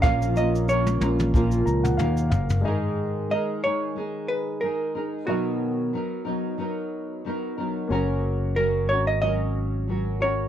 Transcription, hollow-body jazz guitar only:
X:1
M:4/4
L:1/16
Q:"Swing 16ths" 1/4=91
K:G#dor
V:1 name="Hollow-body jazz guitar"
e2 d2 c4 z8 | z4 d2 c4 B2 A4 | F8 z8 | z4 A2 c d d6 c2 |]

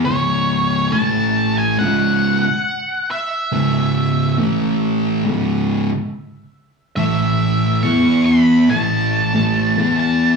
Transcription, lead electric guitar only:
X:1
M:4/4
L:1/16
Q:1/4=70
K:C#m
V:1 name="Lead electric guitar"
c4 a3 g f6 e2- | e4 z12 | e4 c'2 b2 a6 a2 |]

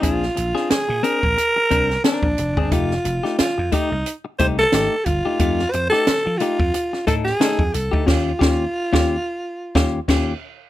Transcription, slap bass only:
X:1
M:4/4
L:1/16
Q:"Swing 16ths" 1/4=90
K:Fmix
V:1 name="Slap bass" clef=bass
B,,,2 B,,, z2 B,, z B,,, z2 C,,2 z B,,, F,,, G,,, | F,,,2 F,,, z2 F,, z C,, z2 C,,2 _A,,, z G,,, z | F,,2 F,, z2 F, z F,, z2 A,,2 z F,, C,, D,, | E,,2 E,,2 z E,,2 z3 E,,2 E,,2 z2 |]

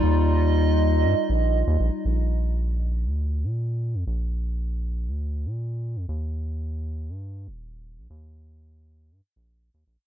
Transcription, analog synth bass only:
X:1
M:4/4
L:1/16
Q:1/4=119
K:Bb
V:1 name="Analog synth bass" clef=bass
E,,8 G,, z B,,,3 E,, B,,, z | B,,,8 D,,3 B,,4 F,, | B,,,8 D,,3 B,,4 F,, | E,,8 G,,3 E,,,4 B,,, |
E,,8 G,, z B,,,3 E,, B,,, z |]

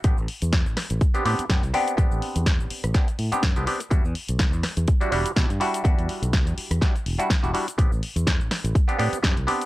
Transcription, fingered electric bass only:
X:1
M:4/4
L:1/16
Q:"Swing 16ths" 1/4=124
K:Ador
V:1 name="Fingered electric bass" clef=bass
A,,, A,,, z E,,2 A,,, z A,,, z2 A,, z F,, C,, z2 | A,,, A,,, z E,,2 A,,, z A,,, z2 A,, z F,, C,, z2 | E,, E,, z B,,,2 E,, z E,, z2 E,,, z B,, G,, z2 | E,, E,, z B,,,2 E,, z E,, z2 E,,, z2 E,,, z2 |
A,,, A,,, z E,,2 A,,, z A,,, z2 A,, z F,, C,, z2 |]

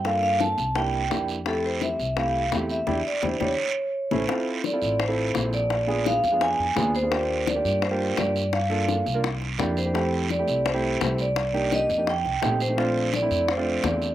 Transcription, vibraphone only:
X:1
M:4/4
L:1/8
Q:1/4=170
K:F
V:1 name="Vibraphone"
f f a2 g3 z | A c e2 f2 z e- | e d c _d4 c- | [K:Bblyd] c z d d c3 d- |
d2 f f _a3 c- | c2 d d c2 d2 | f4 z3 c- | c z d d c3 d- |
d2 _e e g3 c- | c2 d d c2 d2 |]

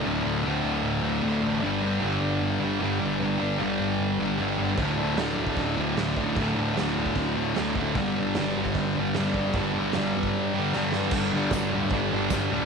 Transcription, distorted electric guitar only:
X:1
M:4/4
L:1/8
Q:1/4=152
K:Glyd
V:1 name="Distorted electric guitar" clef=bass
[D,,A,,D,] [A,,D,] [D,,A,,D,]3 [A,,D,] [D,,A,,D,] [A,,D,] | [G,,D,G,] [D,G,] [G,,D,G,]3 [D,G,] [G,,D,G,] [D,G,] | [G,,D,G,] [D,G,] [G,,D,G,]3 [D,G,] [G,,D,G,] [D,G,] | [D,,A,,D,] [A,,D,] [D,,A,,D,]3 [A,,D,] [D,,A,,D,] [A,,D,] |
[D,,A,,D,] [A,,D,] [D,,A,,D,]3 [A,,D,] [D,,A,,D,] [A,,D,] | [G,,D,G,] [D,G,] [G,,D,G,]3 [D,G,] [G,,D,G,] [D,G,] | [G,,D,G,] [D,G,] [G,,D,G,]3 [D,G,] [G,,D,G,] [D,G,] | [G,,D,G,] [G,,D,G,] [G,,D,G,] [G,,D,G,] [G,,D,G,] [G,,D,G,] [G,,D,G,] [G,,D,G,] |]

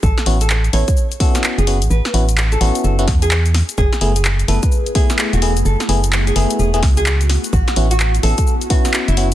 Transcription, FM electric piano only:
X:1
M:4/4
L:1/16
Q:"Swing 16ths" 1/4=128
K:F#m
V:1 name="FM electric piano"
z2 [B,CEF] z3 [B,CEA] z3 [B,CEF]4 [B,CEF] z | z2 [B,CEF] z3 [B,CEF]3 [B,CEF] z6 | z2 [A,B,EG] z3 [A,B,EA] z3 [A,B,EG]4 [A,B,EG] z | z2 [A,B,EG] z3 [A,B,EG]3 [A,B,EG] z6 |
z2 [B,CEF] z3 [B,CEA] z3 [B,CEF]4 [B,CEF] z |]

